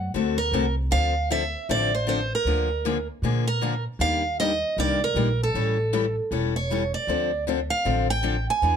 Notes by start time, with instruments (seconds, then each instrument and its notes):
Already playing: upright bass F#2, steel-string acoustic guitar F#5
0.14 upright bass D2, steel-string acoustic guitar D3 A3 C4 F#4 A4
0.38 steel-string acoustic guitar A#4
0.52 upright bass C2, steel-string acoustic guitar D3 A3 C4 F#4 A4
0.91 upright bass D2, steel-string acoustic guitar D3 F3 C4 D4 A4 F5
1.30 steel-string acoustic guitar D3 F3 C4 D4 A4 E5
1.69 upright bass A1, steel-string acoustic guitar D3 F3 C4 D4 A4 D5
1.95 steel-string acoustic guitar C5
2.07 steel-string acoustic guitar D3 F3 C4 D4 A4 C5
2.35 steel-string acoustic guitar A#4
2.45 upright bass D2, steel-string acoustic guitar D3 F3 A#3 D4 G#4
2.85 steel-string acoustic guitar D3 F3 A#3 D4 G#4
3.22 upright bass A#2, steel-string acoustic guitar D3 F3 A#3 D4 G#4
3.47 steel-string acoustic guitar A#4
3.61 steel-string acoustic guitar D3 F3 A#3 D4 G#4
3.99 upright bass D#2, steel-string acoustic guitar D#3 G3 A#3 D4 G4 F5
4.40 steel-string acoustic guitar D#3 G3 A#3 D4 G4 D#5
4.77 upright bass C2, steel-string acoustic guitar D#3 G3 A#3 D4 G4 D5
5.04 steel-string acoustic guitar A#4
5.15 upright bass A#1, steel-string acoustic guitar D#3 G3 A#3 D4 G4
5.43 steel-string acoustic guitar A4
5.55 upright bass A1, steel-string acoustic guitar E3 G3 C#4 E4 A4
5.93 steel-string acoustic guitar E3 G3 C#4 E4 A4
6.31 upright bass E1, steel-string acoustic guitar E3 G3 C#4 E4 A4
6.56 steel-string acoustic guitar C#5
6.70 steel-string acoustic guitar E3 G3 C#4 E4 A4
6.94 steel-string acoustic guitar D5
7.07 upright bass D2, steel-string acoustic guitar D3 F3 C4 D4 A4
7.47 steel-string acoustic guitar D3 F3 C4 D4 A4
7.70 steel-string acoustic guitar F5
7.85 upright bass A1, steel-string acoustic guitar D3 F3 C4 D4 A4
8.10 steel-string acoustic guitar G5
8.23 steel-string acoustic guitar D3 F3 C4 D4 A4
8.50 steel-string acoustic guitar G#5
8.62 upright bass E2, steel-string acoustic guitar E3 B3 D4 G#4